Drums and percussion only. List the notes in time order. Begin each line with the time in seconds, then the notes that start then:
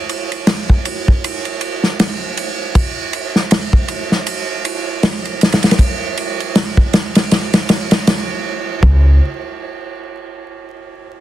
0.09 ride
0.32 ride
0.47 snare, ride
0.70 kick
0.85 ride
1.08 kick
1.24 ride
1.45 ride
1.61 ride
1.83 snare
2.00 snare, ride
2.37 ride
2.75 kick, ride
3.13 ride
3.36 snare
3.51 snare, ride
3.73 kick
3.88 ride
4.12 snare
4.26 ride
4.65 ride
5.03 snare, ride
5.25 ride
5.41 snare, ride
5.52 snare, ride
5.63 snare, ride
5.71 snare, ride
5.79 kick, ride
6.17 ride
6.40 ride
6.55 snare, ride
6.77 kick
6.93 snare, ride
7.15 snare, ride
7.31 snare, ride
7.53 snare, ride
7.69 snare, ride
7.91 snare, ride
8.07 snare, ride
8.83 kick